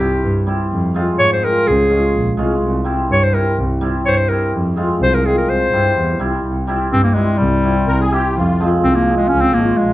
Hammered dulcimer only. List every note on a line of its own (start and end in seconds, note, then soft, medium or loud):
0.00 0.45 G3 medium
0.00 0.11 C4 medium
0.00 0.12 E4 medium
0.47 0.76 G3 medium
0.47 0.59 C4 medium
0.47 0.59 E4 medium
0.94 1.41 G#3 medium
0.94 1.07 C4 medium
0.94 1.07 F4 loud
1.42 1.71 G#3 medium
1.42 1.55 C4 medium
1.42 1.55 F4 medium
1.89 2.36 G#3 medium
1.89 2.02 C#4 medium
1.89 2.03 F4 medium
2.37 2.67 G#3 medium
2.37 2.50 C#4 medium
2.37 2.50 F4 medium
2.84 3.31 G3 medium
2.84 2.97 C4 medium
2.84 2.98 E4 medium
3.32 3.63 G3 medium
3.32 3.45 C4 medium
3.32 3.46 E4 medium
3.81 4.27 G3 medium
3.81 3.94 C4 medium
3.81 3.94 E4 medium
4.28 4.58 G3 medium
4.28 4.41 C4 medium
4.28 4.42 E4 medium
4.76 5.24 G#3 medium
4.76 4.89 C4 medium
4.76 4.89 F4 loud
5.25 5.54 G#3 medium
5.25 5.38 C4 medium
5.25 5.38 F4 medium
5.73 6.18 G3 medium
5.73 5.85 C4 medium
5.73 5.86 E4 medium
6.19 6.50 G3 medium
6.19 6.32 C4 medium
6.19 6.33 E4 loud
6.67 7.14 G3 loud
6.67 6.80 C4 medium
6.67 6.81 E4 loud
7.15 7.45 G3 medium
7.15 7.28 C4 medium
7.15 7.28 E4 medium
7.63 8.10 G3 medium
7.63 7.76 C4 medium
7.63 7.76 E4 medium
8.11 8.41 G3 medium
8.11 8.24 C4 medium
8.11 8.24 E4 loud
8.60 9.07 F3 medium
8.60 9.08 G#3 medium
8.60 8.72 C4 medium
9.08 9.37 F3 medium
9.08 9.37 G#3 medium
9.08 9.21 C4 medium
9.56 9.93 F3 medium
9.56 9.93 G#3 medium
9.56 9.69 C#4 medium